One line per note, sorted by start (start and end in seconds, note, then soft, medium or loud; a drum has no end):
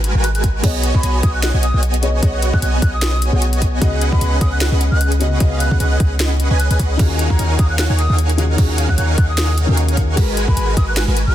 0.00 0.13 G#1 loud
0.00 0.12 G#3 medium
0.00 0.12 F#4 medium
0.00 0.12 A#4 medium
0.00 0.12 B4 medium
0.00 0.12 G#5 medium
0.04 closed hi-hat medium
0.15 0.62 G#1 loud
0.15 0.62 G#3 loud
0.15 0.62 F#4 medium
0.15 0.62 A#4 medium
0.15 0.62 B4 medium
0.15 0.62 G#5 loud
0.24 0.31 F#6 medium
0.24 closed hi-hat medium
0.35 0.41 F#6 medium
0.35 closed hi-hat medium
0.44 kick medium
0.44 closed hi-hat medium
0.62 0.92 B1 loud
0.62 2.00 B3 loud
0.62 0.92 B3 medium
0.62 0.92 F#4 medium
0.62 2.00 G#4 medium
0.62 2.01 C#5 medium
0.62 0.92 D#5 medium
0.62 0.92 G#5 medium
0.62 kick loud
0.62 closed hi-hat medium
0.62 crash medium
0.66 2.02 D#5 loud
0.83 closed hi-hat medium
0.95 1.02 B1 loud
0.95 1.02 B3 medium
0.95 1.02 F#4 medium
0.95 1.02 C#5 medium
0.95 1.02 D#5 medium
0.95 1.02 G#5 loud
0.95 1.22 B5 loud
0.95 kick medium
1.03 1.22 B1 loud
1.03 1.21 B3 medium
1.03 1.21 F#4 medium
1.03 1.21 C#5 medium
1.03 1.21 D#5 medium
1.03 1.21 G#5 medium
1.03 closed hi-hat medium
1.23 1.52 B1 loud
1.23 1.52 B3 medium
1.23 1.52 F#4 medium
1.23 1.52 C#5 medium
1.23 1.32 D#6 medium
1.23 kick loud
1.23 closed hi-hat medium
1.34 1.40 F#6 medium
1.43 1.50 F#6 medium
1.43 snare loud
1.43 closed hi-hat medium
1.54 1.72 B1 loud
1.54 1.65 B3 medium
1.54 1.65 F#4 medium
1.54 1.65 C#5 medium
1.54 1.65 D#5 medium
1.54 1.65 G#5 loud
1.63 1.81 D#6 loud
1.63 closed hi-hat medium
1.74 2.21 B1 medium
1.74 2.21 B3 medium
1.74 2.21 F#4 medium
1.74 2.20 C#5 medium
1.74 2.21 D#5 medium
1.74 2.21 G#5 loud
1.83 closed hi-hat medium
1.94 closed hi-hat medium
2.02 2.19 B3 medium
2.02 2.20 G#4 medium
2.02 2.21 C#5 medium
2.02 2.21 D#5 loud
2.02 closed hi-hat medium
2.21 2.51 B1 loud
2.21 3.29 B3 loud
2.21 2.51 B3 medium
2.21 2.51 F#4 medium
2.21 3.30 G#4 medium
2.21 2.51 C#5 medium
2.21 3.31 C#5 medium
2.21 2.51 D#5 medium
2.21 3.31 D#5 loud
2.21 2.51 F#5 medium
2.21 kick loud
2.21 closed hi-hat medium
2.42 closed hi-hat medium
2.53 2.61 B1 loud
2.53 2.61 B3 medium
2.53 2.61 D#5 medium
2.53 2.61 G#5 medium
2.53 2.59 F#6 medium
2.53 kick medium
2.62 2.80 B1 loud
2.62 2.80 B3 loud
2.62 2.80 F#4 medium
2.62 2.80 C#5 medium
2.62 2.80 D#5 medium
2.62 2.80 G#5 loud
2.62 2.69 F#6 medium
2.62 closed hi-hat medium
2.82 3.31 B1 loud
2.82 2.91 F#6 medium
2.82 kick loud
2.82 closed hi-hat medium
2.93 3.22 D#6 medium
3.02 snare loud
3.02 closed hi-hat medium
3.22 closed hi-hat medium
3.31 3.80 B1 loud
3.31 3.78 B3 medium
3.31 3.79 B3 loud
3.31 3.79 F#4 medium
3.31 3.79 G#4 medium
3.31 3.79 C#5 medium
3.31 3.80 C#5 medium
3.31 3.79 D#5 medium
3.31 3.80 F#5 medium
3.31 3.79 G#5 loud
3.42 closed hi-hat medium
3.53 closed hi-hat medium
3.62 kick medium
3.62 closed hi-hat medium
3.80 4.10 C#2 loud
3.80 5.18 C#3 loud
3.80 5.18 B3 medium
3.80 4.10 C#4 medium
3.80 5.19 F#4 medium
3.80 4.10 G#4 medium
3.80 4.10 B4 medium
3.80 4.10 D#5 medium
3.80 5.20 D#5 loud
3.80 4.10 F#5 medium
3.80 kick loud
3.80 closed hi-hat medium
4.01 closed hi-hat medium
4.12 4.20 C#2 loud
4.12 4.20 C#4 medium
4.12 4.20 G#4 medium
4.12 4.20 B4 medium
4.12 4.20 D#5 medium
4.12 4.20 F#5 loud
4.12 4.39 B5 loud
4.12 kick medium
4.21 4.39 C#2 loud
4.21 4.39 C#4 medium
4.21 4.39 G#4 medium
4.21 4.39 B4 medium
4.21 4.39 D#5 medium
4.21 4.39 F#5 medium
4.21 closed hi-hat medium
4.41 4.70 C#2 loud
4.41 4.69 C#4 medium
4.41 4.69 G#4 medium
4.41 4.69 B4 medium
4.41 4.69 D#5 medium
4.41 4.50 D#6 medium
4.41 kick loud
4.41 closed hi-hat medium
4.52 4.58 F#6 medium
4.61 4.68 F#6 medium
4.61 snare loud
4.61 closed hi-hat medium
4.72 4.90 C#2 loud
4.72 4.83 C#4 medium
4.72 4.83 G#4 medium
4.72 4.83 B4 medium
4.72 4.83 D#5 medium
4.72 4.83 F#5 medium
4.81 closed hi-hat medium
4.92 5.39 C#2 loud
4.92 5.38 C#4 medium
4.92 5.38 G#4 medium
4.92 5.38 B4 medium
4.92 5.38 D#5 medium
4.92 5.38 F#5 medium
4.92 5.09 F#6 loud
5.01 closed hi-hat medium
5.12 closed hi-hat medium
5.20 5.37 C#3 medium
5.20 5.38 B3 medium
5.20 5.39 F#4 medium
5.20 5.39 D#5 loud
5.20 closed hi-hat medium
5.39 5.69 C#2 loud
5.39 6.47 C#3 loud
5.39 6.48 B3 medium
5.39 5.69 C#4 medium
5.39 6.49 F#4 medium
5.39 5.69 G#4 medium
5.39 5.69 B4 medium
5.39 5.69 D#5 medium
5.39 6.49 D#5 loud
5.39 5.69 F5 medium
5.39 kick loud
5.39 closed hi-hat medium
5.60 5.78 F#6 medium
5.60 closed hi-hat medium
5.71 5.78 C#2 loud
5.71 5.79 C#4 medium
5.71 5.79 G#4 medium
5.71 5.79 B4 medium
5.71 5.79 D#5 medium
5.71 5.79 F#5 medium
5.71 kick medium
5.80 5.98 C#2 loud
5.80 5.98 C#4 loud
5.80 5.98 G#4 medium
5.80 5.98 B4 medium
5.80 5.98 D#5 medium
5.80 5.98 F#5 loud
5.80 5.87 F#6 medium
5.80 closed hi-hat medium
5.91 5.97 F#6 medium
6.00 6.49 C#2 loud
6.00 kick loud
6.00 closed hi-hat medium
6.20 snare loud
6.20 closed hi-hat medium
6.40 closed hi-hat medium
6.51 6.68 C#2 medium
6.51 6.68 C#4 loud
6.51 6.68 G#4 medium
6.51 6.68 B4 medium
6.51 6.68 D#5 medium
6.51 6.68 G#5 loud
6.60 6.67 F#6 loud
6.60 closed hi-hat medium
6.71 6.78 C#2 loud
6.71 6.78 C#4 medium
6.71 6.78 G#4 medium
6.71 6.78 B4 medium
6.71 6.78 D#5 medium
6.71 6.78 G#5 medium
6.71 6.76 F#6 medium
6.71 closed hi-hat medium
6.79 6.98 C#2 loud
6.79 6.97 C#4 medium
6.79 6.97 G#4 medium
6.79 6.97 B4 medium
6.79 6.97 D#5 medium
6.79 6.97 F#5 loud
6.79 kick medium
6.79 closed hi-hat medium
6.97 7.28 D#2 loud
6.97 8.35 D#3 loud
6.97 8.36 C#4 medium
6.97 7.28 D#4 medium
6.97 8.36 F4 medium
6.97 8.37 F#4 medium
6.97 7.28 A#4 medium
6.97 7.28 C#5 medium
6.97 7.28 F5 medium
6.97 7.28 F#5 medium
6.97 7.28 G#5 medium
6.97 kick loud
6.97 closed hi-hat medium
6.97 crash soft
7.01 8.37 G#4 loud
7.19 closed hi-hat medium
7.30 7.37 D#2 loud
7.30 7.38 D#4 medium
7.30 7.38 A#4 medium
7.30 7.38 C#5 medium
7.30 7.38 F5 medium
7.30 7.38 F#5 medium
7.30 7.38 G#5 loud
7.30 7.57 A#5 loud
7.30 kick medium
7.39 7.57 D#2 loud
7.39 7.57 D#4 medium
7.39 7.57 A#4 medium
7.39 7.57 C#5 medium
7.39 7.57 F5 medium
7.39 7.57 F#5 medium
7.39 7.57 G#5 medium
7.39 closed hi-hat medium
7.59 7.88 D#2 loud
7.59 7.87 D#4 medium
7.59 7.87 A#4 medium
7.59 7.87 C#5 medium
7.59 7.87 F5 medium
7.59 7.87 F#5 medium
7.59 7.87 G#5 medium
7.59 7.68 D#6 medium
7.59 kick loud
7.59 closed hi-hat medium
7.70 7.76 F#6 medium
7.79 7.86 F#6 medium
7.79 snare loud
7.79 closed hi-hat medium
7.79 crash soft
7.90 8.08 D#2 loud
7.90 8.01 D#4 medium
7.90 8.01 A#4 medium
7.90 8.01 C#5 medium
7.90 8.01 F5 medium
7.90 8.01 F#5 medium
7.90 8.01 G#5 medium
7.99 8.16 D#6 loud
7.99 closed hi-hat medium
8.10 8.57 D#2 loud
8.10 8.56 D#4 medium
8.10 8.56 A#4 medium
8.10 8.56 C#5 medium
8.10 8.56 F5 medium
8.10 8.56 F#5 medium
8.10 8.56 G#5 medium
8.19 closed hi-hat medium
8.30 closed hi-hat medium
8.37 8.55 D#3 medium
8.37 8.56 C#4 medium
8.37 8.56 F4 medium
8.37 8.56 F#4 medium
8.37 8.57 G#4 loud
8.37 closed hi-hat medium
8.56 8.87 D#2 loud
8.56 9.65 D#3 loud
8.56 9.66 C#4 medium
8.56 8.87 D#4 medium
8.56 9.67 F#4 medium
8.56 9.67 G#4 loud
8.56 8.87 A#4 medium
8.56 8.87 C#5 medium
8.56 8.87 F5 medium
8.56 8.87 F#5 medium
8.56 kick loud
8.56 closed hi-hat medium
8.56 crash soft
8.78 closed hi-hat medium
8.89 8.96 D#2 loud
8.89 8.97 D#4 medium
8.89 8.97 A#4 medium
8.89 8.97 C#5 medium
8.89 8.97 F5 medium
8.89 8.97 F#5 medium
8.89 8.97 G#5 medium
8.89 8.95 F#6 medium
8.89 kick medium
8.98 9.16 D#2 loud
8.98 9.16 D#4 medium
8.98 9.16 A#4 medium
8.98 9.16 C#5 medium
8.98 9.16 F5 medium
8.98 9.16 F#5 medium
8.98 9.16 G#5 loud
8.98 9.05 F#6 medium
8.98 closed hi-hat medium
9.18 9.66 D#2 loud
9.18 9.66 A#4 medium
9.18 9.27 F#6 medium
9.18 kick loud
9.18 closed hi-hat medium
9.29 9.58 D#6 medium
9.38 snare loud
9.38 closed hi-hat medium
9.38 crash soft
9.58 closed hi-hat medium
9.67 10.19 D#2 loud
9.67 10.14 D#3 medium
9.67 10.15 C#4 medium
9.67 10.15 D#4 loud
9.67 10.15 F#4 medium
9.67 10.15 A#4 medium
9.67 10.16 A#4 medium
9.67 10.15 C#5 medium
9.67 10.15 F5 medium
9.67 10.15 F#5 medium
9.67 10.15 G#5 loud
9.77 closed hi-hat medium
9.88 closed hi-hat medium
9.97 kick medium
9.97 closed hi-hat medium
10.15 10.46 G#1 loud
10.15 11.35 G#3 loud
10.15 10.46 G#3 medium
10.15 11.35 F#4 loud
10.15 11.35 A#4 medium
10.15 10.46 B4 medium
10.15 kick loud
10.15 closed hi-hat medium
10.15 crash soft
10.19 11.35 B4 loud
10.37 closed hi-hat medium
10.48 10.55 G#1 loud
10.48 10.56 G#3 medium
10.48 10.56 F#4 medium
10.48 10.56 A#4 medium
10.48 10.56 G#5 loud
10.48 10.75 B5 loud
10.48 kick medium
10.57 10.75 G#1 loud
10.57 10.75 G#3 medium
10.57 10.75 F#4 medium
10.57 10.75 A#4 medium
10.57 10.75 B4 medium
10.57 10.75 G#5 medium
10.57 closed hi-hat medium
10.77 11.06 G#1 loud
10.77 11.05 G#3 medium
10.77 11.05 F#4 medium
10.77 11.05 A#4 medium
10.77 11.05 G#5 medium
10.77 10.86 D#6 medium
10.77 kick loud
10.77 closed hi-hat medium
10.88 10.94 F#6 medium
10.97 11.04 F#6 medium
10.97 snare loud
10.97 closed hi-hat medium
10.97 crash soft
11.08 11.25 G#1 loud
11.08 11.19 G#3 medium
11.08 11.19 F#4 medium
11.08 11.19 A#4 medium
11.08 11.19 B4 medium
11.08 11.19 G#5 medium
11.17 closed hi-hat medium
11.28 11.35 G#1 loud
11.28 11.35 G#3 medium
11.28 11.35 F#4 medium
11.28 11.35 A#4 medium
11.28 11.35 B4 medium
11.28 11.35 G#5 medium
11.28 11.35 F#6 medium